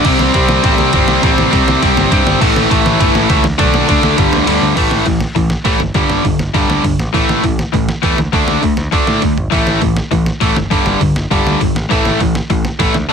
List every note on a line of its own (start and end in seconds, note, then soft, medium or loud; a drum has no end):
0.05 0.15 C2 loud
0.05 0.35 C3 medium
0.05 0.35 G3 loud
0.05 0.34 C4 loud
0.05 kick loud
0.05 crash loud
0.19 0.30 C2 medium
0.19 snare loud
0.34 0.44 C2 loud
0.34 0.62 C3 medium
0.34 0.63 G3 loud
0.34 0.63 C4 loud
0.34 kick loud
0.34 ride medium
0.49 0.59 C2 loud
0.49 snare loud
0.63 0.74 A1 loud
0.63 0.93 C3 medium
0.63 0.93 G3 medium
0.63 0.92 C4 medium
0.63 kick loud
0.63 ride medium
0.78 0.88 C2 medium
0.78 snare loud
0.93 1.04 G1 medium
0.93 1.22 C3 medium
0.93 1.23 G3 loud
0.93 1.24 C4 loud
0.93 kick loud
0.93 ride medium
1.08 1.18 C2 medium
1.08 snare loud
1.23 1.33 A1 medium
1.23 1.52 C3 loud
1.23 1.51 G3 loud
1.23 1.51 C4 loud
1.23 kick loud
1.23 ride medium
1.38 1.48 A1 loud
1.38 snare loud
1.52 1.62 C2 loud
1.52 1.81 C3 medium
1.52 1.81 G3 loud
1.52 1.83 C4 loud
1.52 kick loud
1.52 ride medium
1.68 1.77 C2 medium
1.68 snare loud
1.82 1.92 C2 loud
1.82 2.11 C3 medium
1.82 2.10 G3 medium
1.82 2.10 C4 medium
1.82 kick loud
1.82 ride medium
1.97 2.07 G1 medium
1.97 snare loud
2.11 2.21 G2 loud
2.11 2.40 C3 medium
2.11 2.40 G3 loud
2.11 2.40 C4 loud
2.11 kick loud
2.11 ride medium
2.27 2.36 G1 medium
2.27 snare loud
2.40 2.51 A1 loud
2.40 2.70 A2 loud
2.40 2.70 E3 loud
2.40 2.69 A3 loud
2.40 kick loud
2.40 crash loud
2.56 2.66 A1 loud
2.56 snare loud
2.70 2.81 A1 loud
2.70 2.98 A2 medium
2.70 2.99 E3 loud
2.70 2.99 A3 loud
2.70 kick loud
2.70 ride medium
2.86 2.95 A1 medium
2.86 snare loud
2.99 3.10 G1 loud
2.99 3.30 A2 medium
2.99 3.29 E3 medium
2.99 3.29 A3 loud
2.99 kick loud
2.99 ride medium
3.15 3.25 A1 loud
3.15 snare loud
3.30 3.40 C#2 loud
3.30 3.44 A2 loud
3.30 3.44 E3 loud
3.30 3.44 A3 loud
3.30 kick loud
3.30 ride medium
3.44 3.54 D2 loud
3.44 snare loud
3.58 3.69 B1 loud
3.58 3.88 D3 loud
3.58 3.87 A3 loud
3.58 3.87 D4 loud
3.58 kick loud
3.58 ride medium
3.74 3.83 B1 medium
3.74 snare loud
3.88 3.98 D2 loud
3.88 4.16 D3 medium
3.88 4.17 A3 loud
3.88 4.17 D4 loud
3.88 kick loud
3.88 ride medium
4.03 4.13 D2 medium
4.03 snare loud
4.17 4.28 G1 loud
4.17 4.46 G2 medium
4.17 4.46 D3 loud
4.17 4.45 G3 loud
4.17 kick loud
4.17 ride medium
4.33 4.42 D2 medium
4.33 snare loud
4.46 4.57 D2 medium
4.46 4.76 G2 medium
4.46 4.75 D3 loud
4.46 4.76 G3 loud
4.46 ride medium
4.62 4.72 D2 loud
4.75 4.86 A1 medium
4.75 5.05 A2 medium
4.75 5.05 E3 medium
4.75 5.06 A3 medium
4.75 kick loud
4.75 open hi-hat medium
4.75 crash loud
4.91 5.01 A1 medium
4.91 snare loud
5.06 5.25 A1 medium
5.06 5.20 A2 medium
5.06 5.20 E3 medium
5.06 kick loud
5.06 open hi-hat medium
5.20 snare loud
5.35 5.55 A1 medium
5.35 5.49 A2 medium
5.35 5.49 E3 medium
5.35 kick loud
5.35 open hi-hat medium
5.50 snare loud
5.65 5.75 A1 medium
5.65 5.79 A2 medium
5.65 5.80 E3 medium
5.65 5.80 A3 loud
5.65 kick loud
5.65 open hi-hat medium
5.80 5.90 G1 medium
5.80 snare loud
5.94 6.04 G1 medium
5.94 6.23 G2 medium
5.94 6.23 D3 medium
5.94 6.24 G3 medium
5.94 kick loud
5.94 open hi-hat medium
6.09 6.19 G1 medium
6.09 snare loud
6.25 6.35 G1 medium
6.25 6.38 G2 medium
6.25 6.38 D3 medium
6.25 kick loud
6.25 open hi-hat medium
6.39 6.49 G1 medium
6.39 snare loud
6.54 6.64 G1 medium
6.54 6.83 G2 medium
6.54 6.83 D3 medium
6.54 6.84 G3 medium
6.54 kick loud
6.54 open hi-hat medium
6.68 6.78 D2 medium
6.68 snare loud
6.84 6.94 G1 medium
6.84 6.98 G2 medium
6.84 6.98 D3 medium
6.84 kick loud
6.84 open hi-hat medium
6.99 7.08 A1 medium
6.99 snare loud
7.13 7.24 A1 medium
7.13 7.42 A2 medium
7.13 7.42 E3 medium
7.13 7.43 A3 loud
7.13 kick loud
7.13 open hi-hat medium
7.28 7.38 A1 medium
7.28 snare loud
7.43 7.63 A1 medium
7.43 7.57 A2 medium
7.43 7.57 E3 medium
7.43 kick loud
7.43 open hi-hat medium
7.59 snare loud
7.73 7.93 A1 medium
7.73 7.87 A2 medium
7.73 7.87 E3 medium
7.73 kick loud
7.73 open hi-hat medium
7.89 snare loud
8.02 8.13 E2 medium
8.02 8.17 A2 medium
8.02 8.17 E3 loud
8.02 8.17 A3 loud
8.02 kick loud
8.02 open hi-hat medium
8.17 8.27 D2 medium
8.17 snare loud
8.32 8.43 D2 medium
8.32 8.61 D3 medium
8.32 8.61 A3 loud
8.32 8.62 D4 loud
8.32 kick loud
8.32 open hi-hat medium
8.47 8.57 D2 medium
8.47 snare loud
8.62 8.72 D2 medium
8.62 8.76 D3 medium
8.62 8.76 A3 medium
8.62 kick loud
8.62 open hi-hat medium
8.77 8.87 D2 medium
8.77 snare loud
8.92 9.02 D2 medium
8.92 9.20 D3 medium
8.92 9.20 A3 medium
8.92 9.22 D4 medium
8.92 kick loud
8.92 open hi-hat medium
9.07 9.17 A2 medium
9.07 snare loud
9.21 9.32 D2 medium
9.21 9.35 D3 medium
9.21 9.35 A3 medium
9.21 kick loud
9.21 snare medium
9.21 open hi-hat medium
9.37 9.46 G#1 medium
9.37 floor tom medium
9.50 9.62 A1 medium
9.50 9.80 A2 medium
9.50 9.80 E3 medium
9.50 9.81 A3 medium
9.50 kick loud
9.50 open hi-hat medium
9.67 9.77 A1 medium
9.67 snare loud
9.81 10.01 A1 medium
9.81 9.95 A2 medium
9.81 9.95 E3 medium
9.81 kick loud
9.81 open hi-hat medium
9.97 snare loud
10.11 10.31 A1 medium
10.11 10.25 A2 medium
10.11 10.25 E3 medium
10.11 kick loud
10.11 open hi-hat medium
10.26 snare loud
10.41 10.51 A1 medium
10.41 10.55 A2 loud
10.41 10.55 E3 loud
10.41 10.56 A3 loud
10.41 kick loud
10.41 open hi-hat medium
10.56 10.66 G1 medium
10.56 snare loud
10.70 10.81 G1 medium
10.70 10.99 G2 medium
10.70 11.00 D3 loud
10.70 11.00 G3 medium
10.70 kick loud
10.70 open hi-hat medium
10.86 10.95 G1 medium
10.86 snare loud
11.01 11.11 G1 medium
11.01 11.14 G2 medium
11.01 11.15 D3 medium
11.01 kick loud
11.01 open hi-hat medium
11.15 11.25 G1 medium
11.15 snare loud
11.31 11.41 G1 medium
11.31 11.60 G2 medium
11.31 11.60 D3 medium
11.31 11.60 G3 medium
11.31 kick loud
11.31 open hi-hat medium
11.46 11.55 D2 medium
11.46 snare loud
11.61 11.71 G1 medium
11.61 11.74 G2 medium
11.61 11.74 D3 medium
11.61 kick loud
11.61 open hi-hat medium
11.75 11.85 A1 medium
11.75 snare loud
11.89 12.01 A1 medium
11.89 12.19 A2 medium
11.89 12.19 E3 medium
11.89 12.20 A3 medium
11.89 kick loud
11.89 open hi-hat medium
12.05 12.15 A1 medium
12.05 snare loud
12.20 12.40 A1 medium
12.20 12.34 A2 medium
12.20 12.34 E3 medium
12.20 kick loud
12.20 open hi-hat medium
12.35 snare loud
12.50 12.69 A1 medium
12.50 12.63 A2 medium
12.50 12.64 E3 medium
12.50 kick loud
12.50 open hi-hat medium
12.65 snare loud
12.79 12.89 A1 medium
12.79 12.94 A2 medium
12.79 12.94 E3 medium
12.79 12.94 A3 loud
12.79 kick loud
12.79 open hi-hat medium
12.94 13.04 D2 medium
12.94 snare loud
13.09 13.13 D3 medium
13.09 13.13 A3 loud